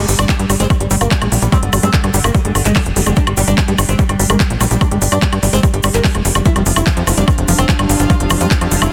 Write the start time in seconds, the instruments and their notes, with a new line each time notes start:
Already playing: string section D4
0.08 analog synth bass G1, oud G3, open hi-hat, shaker
0.16 analog synth bass G1, oud D4, string section G4, high woodblock, shaker
0.27 acid bass G3, oud G3, string section G5, kick, clap, closed hi-hat, shaker
0.39 analog synth bass G2, oud G3, closed hi-hat
0.50 analog synth bass G1, acid bass G3, oud G3, open hi-hat, high woodblock, shaker
0.60 analog synth bass G1, acid bass G#3, oud C4, closed hi-hat, shaker
0.70 oud G3, kick, closed hi-hat, high woodblock, shaker
0.80 analog synth bass G1, oud G3, closed hi-hat
0.91 analog synth bass G1, acid bass G3, oud G3, open hi-hat, shaker
1.01 analog synth bass G1, oud A#3, closed hi-hat, high woodblock, shaker
1.11 acid bass G3, oud G3, kick, clap, closed hi-hat, shaker
1.22 analog synth bass A#1, acid bass G#3, closed hi-hat, high woodblock
1.32 analog synth bass A#1, oud G3, open hi-hat, shaker
1.42 analog synth bass A#1, oud G3, closed hi-hat, shaker
1.52 acid bass G3, oud C4, kick, closed hi-hat, high woodblock, shaker
1.63 analog synth bass G1, oud D3, closed hi-hat
1.73 analog synth bass G1, oud D3, acid bass G3, open hi-hat, high woodblock, shaker
1.83 analog synth bass G2, acid bass G#3, oud C4, closed hi-hat, shaker
1.93 oud D3, kick, clap, closed hi-hat, shaker
2.04 analog synth bass G2, oud D3, closed hi-hat, high woodblock
2.14 analog synth bass G1, oud D3, acid bass G3, open hi-hat, shaker
2.24 analog synth bass G1, oud A#3, closed hi-hat, high woodblock, shaker
2.35 oud D3, acid bass G3, kick, closed hi-hat, shaker
2.45 analog synth bass G1, oud D3, acid bass G#3, closed hi-hat
2.55 analog synth bass G1, oud D3, open hi-hat, high woodblock, shaker
2.65 analog synth bass G1, oud G#3, clap, closed hi-hat, shaker
2.75 oud D3, acid bass G3, kick, clap, open hi-hat, high woodblock, shaker
2.86 analog synth bass F1, closed hi-hat
2.96 analog synth bass F1, oud D3, acid bass G3, open hi-hat, shaker
3.06 analog synth bass F1, oud D3, acid bass G#3, closed hi-hat, high woodblock, shaker
3.16 oud D4, kick, closed hi-hat, shaker
3.27 analog synth bass G1, oud G3, closed hi-hat, high woodblock
3.37 analog synth bass G1, acid bass G3, oud G3, open hi-hat, shaker
3.48 analog synth bass G1, oud D4, closed hi-hat, shaker
3.58 oud G3, acid bass G3, kick, clap, closed hi-hat, high woodblock, shaker
3.68 analog synth bass G2, oud G3, acid bass G#3, closed hi-hat
3.78 analog synth bass G1, oud G3, open hi-hat, high woodblock, shaker
3.89 analog synth bass G1, oud C4, closed hi-hat, shaker
3.99 oud G3, acid bass G3, kick, closed hi-hat, shaker
4.09 analog synth bass G1, oud G3, closed hi-hat, high woodblock
4.19 analog synth bass G1, oud G3, acid bass G3, open hi-hat, shaker
4.30 analog synth bass G1, acid bass G#3, oud A#3, high woodblock, shaker
4.40 oud G3, kick, clap, closed hi-hat, shaker
4.50 analog synth bass A#1, closed hi-hat
4.61 analog synth bass A#1, oud G3, acid bass G3, open hi-hat, high woodblock, shaker
4.71 analog synth bass A#1, oud G3, closed hi-hat, shaker
4.81 acid bass G3, oud D4, kick, closed hi-hat, high woodblock, shaker
4.91 analog synth bass G1, oud G3, acid bass G#3, closed hi-hat
5.02 analog synth bass G1, oud G3, open hi-hat, shaker
5.12 analog synth bass G2, oud D4, closed hi-hat, high woodblock, shaker
5.22 oud G3, acid bass G3, kick, clap, closed hi-hat, shaker
5.32 analog synth bass G2, oud G3, closed hi-hat, high woodblock
5.43 analog synth bass G1, oud G3, acid bass G3, open hi-hat, shaker
5.53 analog synth bass G1, acid bass G#3, oud C4, closed hi-hat, shaker
5.63 oud G3, kick, closed hi-hat, high woodblock, shaker
5.74 analog synth bass G1, oud G3, closed hi-hat
5.83 analog synth bass G1, oud G3, acid bass G3, open hi-hat, high woodblock, shaker
5.94 analog synth bass G1, oud A#3, clap, closed hi-hat, shaker
6.04 oud G3, acid bass G3, kick, clap, open hi-hat, shaker
6.15 analog synth bass F1, acid bass G#3, closed hi-hat, high woodblock
6.25 analog synth bass F1, oud G3, open hi-hat, shaker
6.35 analog synth bass F1, oud G3, closed hi-hat, high woodblock, shaker
6.45 acid bass F3, synth texture G3 D4, string section C4, oud E4, kick, closed hi-hat, shaker
6.50 string section F4
6.56 analog synth bass F1, oud F3, acid bass G3, closed hi-hat, high woodblock
6.66 analog synth bass F1, oud F3, open hi-hat, shaker
6.76 analog synth bass F1, oud E4, high woodblock, shaker
6.87 oud F3, acid bass F3, kick, clap, closed hi-hat, shaker
6.91 string section F5
6.97 analog synth bass F2, oud F3, closed hi-hat
7.07 analog synth bass F1, oud F3, acid bass F3, open hi-hat, high woodblock, shaker
7.17 analog synth bass F1, acid bass G3, oud D4, closed hi-hat, shaker
7.28 oud F3, kick, closed hi-hat, high woodblock, shaker
7.38 analog synth bass F1, oud F3, closed hi-hat
7.48 analog synth bass F1, oud F3, acid bass F3, open hi-hat, shaker
7.58 analog synth bass F1, oud C4, closed hi-hat, high woodblock, shaker
7.69 oud F3, acid bass F3, kick, clap, closed hi-hat, shaker
7.79 analog synth bass G1, acid bass G3, closed hi-hat, high woodblock
7.89 analog synth bass G1, oud F3, open hi-hat, shaker
8.00 analog synth bass G1, oud F3, closed hi-hat, shaker
8.10 acid bass F3, oud F4, kick, closed hi-hat, high woodblock, shaker
8.20 analog synth bass F1, oud F3, closed hi-hat
8.30 analog synth bass F1, oud F3, acid bass F3, open hi-hat, high woodblock, shaker
8.41 analog synth bass F2, acid bass G3, oud F4, closed hi-hat, shaker
8.51 oud F3, kick, clap, closed hi-hat, shaker
8.61 analog synth bass F2, oud F3, closed hi-hat, high woodblock
8.71 analog synth bass F1, oud F3, acid bass F3, open hi-hat, shaker
8.82 analog synth bass F1, oud E4, closed hi-hat, high woodblock, shaker